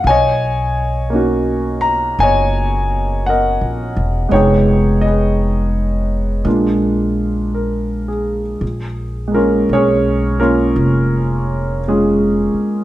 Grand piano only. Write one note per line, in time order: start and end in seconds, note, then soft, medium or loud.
0.07 2.16 C#5 medium
0.07 2.17 D#5 medium
0.07 1.09 G#5 loud
1.10 4.31 A#3 medium
1.10 4.32 C#4 soft
1.10 4.31 D#4 soft
1.15 4.33 F#4 medium
1.81 2.19 A#5 medium
2.20 4.30 C#5 medium
2.20 3.28 D#5 medium
2.20 3.29 G#5 medium
3.26 4.30 A#4 medium
3.26 4.30 D#5 medium
3.26 4.36 F#5 medium
4.29 6.43 G#3 medium
4.29 6.45 B3 soft
4.29 6.46 D#4 soft
4.29 4.98 C#5 medium
4.34 5.04 G#4 medium
4.34 6.47 G5 medium
5.01 6.41 D#5 medium
5.06 8.07 G#4 soft
5.06 6.44 B4 soft
6.45 8.62 G#3 soft
6.45 8.62 A#3 soft
6.45 8.63 D4 soft
6.45 8.63 F4 medium
7.54 8.40 A#4 soft
8.08 8.85 G#4 soft
9.28 11.87 G#3 soft
9.32 9.34 A#3 soft
9.32 9.70 A#3 medium
9.32 9.70 C#4 medium
9.32 9.38 F4 medium
9.32 9.69 A#4 medium
9.39 10.39 F4 soft
9.73 10.39 C#4 medium
9.73 10.40 G#4 medium
9.73 10.38 A#4 medium
9.73 10.39 C#5 medium
10.40 11.80 A#3 medium
10.40 11.80 C#4 medium
10.40 11.80 F4 medium
10.40 11.79 A#4 medium
11.88 12.84 G#3 soft
11.88 12.84 C#4 soft
11.88 12.84 F4 soft
11.88 12.84 G#4 medium